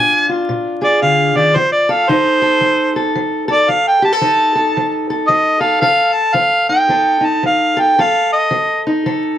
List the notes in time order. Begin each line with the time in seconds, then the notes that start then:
Already playing: A#2 D4 F4 G#5
0.29 F4
0.49 A#2
0.82 G#4 D5
1.02 D3 F5
1.35 D#3 D5
1.56 F3 C5
1.72 D5
1.89 A4 F5
2.09 F3 D#4 C5
2.42 A4
2.61 F3
2.96 A4
3.15 F3
3.48 A4
3.52 D5
3.69 F3 F5
3.87 G5
4.02 G4 A5
4.13 A4
4.21 F3 D#4
4.55 A4
4.77 F3
5.10 A4
5.27 F3 D#5
5.60 A4 F5
5.81 F3 A4 F5
6.13 A5
6.34 F3 F5
6.69 D#4 G5
6.89 F3 A4
7.21 D#4
7.25 A5
7.43 F3 F5
7.77 A4 G5
7.99 F3 A4 F5
8.33 D#5
8.51 F3
8.87 D#4
9.06 F3 A4